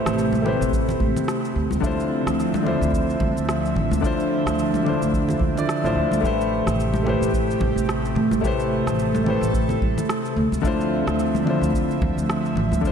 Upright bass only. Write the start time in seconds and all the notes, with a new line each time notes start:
0.06 A1
0.61 A1
1.00 A1
1.56 D2
1.72 D2
1.83 D2
2.26 D2
2.81 D2
3.21 D2
3.36 D2
3.75 A1
3.91 D2
4.46 D2
5.02 D2
5.40 D2
5.84 A1
5.95 D2
6.11 D2
6.23 A1
6.66 A1
7.21 A1
7.61 A1
7.76 A1
8.15 A2
8.31 A1
8.86 A1
9.41 A1
9.81 A1
10.36 D2
10.52 D2
10.64 D2
11.07 D2
11.61 D2
12.01 D2
12.17 D2
12.55 A1
12.71 D2